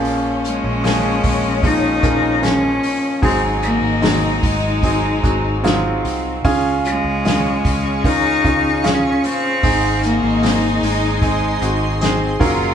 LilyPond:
<<
  \new Staff \with { instrumentName = "Ambient pad" } { \time 4/4 \key aes \mixolydian \tempo 4 = 75 r1 | r1 | <aes' f'' des'''>1 | <aes' ees'' c'''>2.~ <aes' ees'' c'''>8 <bes' f'' f'''>8 | }
  \new Staff \with { instrumentName = "Cello section" } { \time 4/4 \key aes \mixolydian des'1 | ees'2. c'4 | des'1 | ees'2. c'8 f'8 | }
  \new Staff \with { instrumentName = "Grand piano" } { \time 4/4 \key aes \mixolydian <f aes bes des' aes'>4 <f aes bes des' aes'>4 <f aes bes des' ees'>8 <f aes bes des' bes'>8 <f aes bes des' aes'>4 | <ges aes c' ees' aes'>4 <ges aes c' ees' aes'>4 <ges aes c' ees' aes'>8 <ges aes c' ees' ges'>8 <ges aes c' ees' f'>4 | <des' f' aes'>4 <des' f' aes'>4 <des' f' bes'>8 <des' f' aes'>8 <des f' aes'>4 | <c' ees' aes'>4 <c' ees' aes'>4 <c' ees' aes'>8 <c' ees' ges'>8 <c' ees' aes'>8 <ges bes des' f' bes'>8 | }
  \new Staff \with { instrumentName = "Grand piano" } { \clef bass \time 4/4 \key aes \mixolydian bes,4 r2. | aes,4. r2 r8 | des4. r2 r8 | aes,4. r2 r8 | }
  \new Staff \with { instrumentName = "Cello" } { \time 4/4 \key aes \mixolydian r8 aes4. ees'4 des'4 | c'8 bes4 aes2 r8 | r8 aes4. ees'4 des'8 c'8~ | c'8 bes4 aes2 r8 | }
  \new Staff \with { instrumentName = "Fingered electric bass" } { \clef bass \time 4/4 \key aes \mixolydian bes,,8. bes,,8. bes,,4 bes,,4 r8 | aes,,8. aes,,8. aes,,4 aes,,4 c,8 | des,8. des,8. des,4 des,4 r8 | aes,,8. aes,,8. aes,,4 aes,,4 ges,,8 | }
  \new DrumStaff \with { instrumentName = "Drums" } \drummode { \time 4/4 <hho hhp>8 <hho hhp>8 <hho hhp sn>8 <hho hhp bd>8 <hho hhp bd>8 <hho hhp bd>8 <hho hhp sn>8 <hho hhp>8 | <hho hhp bd>8 <hho hhp>8 <hho hhp sn>8 <hho hhp bd>8 <hho hhp bd>8 <hho hhp bd>8 <hho hhp sn>8 <hho hhp>8 | <hho hhp bd>8 <hho hhp>8 <hho hhp sn>8 <hho hhp bd>8 <hho hhp bd>8 <hho hhp bd>8 <hho hhp sn>8 <hho hhp>8 | <hho hhp bd>8 <hho hhp>8 <hho hhp sn>8 <hho hhp>8 <hho hhp bd>8 <hho hhp>8 <hho hhp sn>8 <hho hhp bd>8 | }
>>